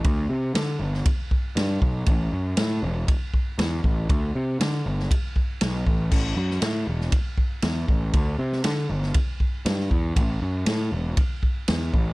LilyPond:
<<
  \new Staff \with { instrumentName = "Picked electric bass" } { \clef bass \time 4/4 \key e \minor \tempo 4 = 119 d,8 c8 d8 g,,8 r4 g,8 b,,8 | a,,8 fis,8 a,8 e,,8 r4 e,8 a,,8 | d,8 c8 d8 g,,8 r4 b,,8 a,,8 | a,,8 fis,8 a,8 e,,8 r4 e,8 a,,8 |
d,8 c8 d8 g,,8 r4 g,8 e,8 | a,,8 fis,8 a,8 e,,8 r4 e,8 a,,8 | }
  \new DrumStaff \with { instrumentName = "Drums" } \drummode { \time 4/4 <bd rb>4 <rb sn>8. sn16 <bd rb>8 bd8 <rb sn>8 bd8 | <bd rb>4 <rb sn>4 <bd rb>8 bd8 <rb sn>8 bd8 | <bd rb>4 <rb sn>8. sn16 <bd rb>8 bd8 <rb sn>8 bd8 | <cymc bd>8. sn16 <rb sn>8. sn16 <bd rb>8 bd8 <rb sn>8 bd8 |
<bd rb>8. sn16 <rb sn>8. sn16 <bd rb>8 bd8 <rb sn>16 sn16 bd8 | <bd rb>4 <rb sn>4 <bd rb>8 bd8 <rb sn>8 bd8 | }
>>